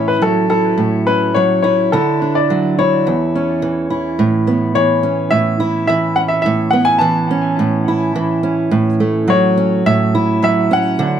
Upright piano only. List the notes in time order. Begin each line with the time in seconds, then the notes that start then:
0.08 B4
0.22 A4
0.50 A4
1.07 B4
1.35 C#5
1.62 C#5
1.92 A4
2.35 D5
2.79 C#5
4.75 C#5
5.31 E5
5.87 E5
6.16 F#5
6.28 E5
6.42 E5
6.71 F#5
6.85 G#5
6.99 A5
9.30 C#5
9.86 E5
10.44 E5
10.73 F#5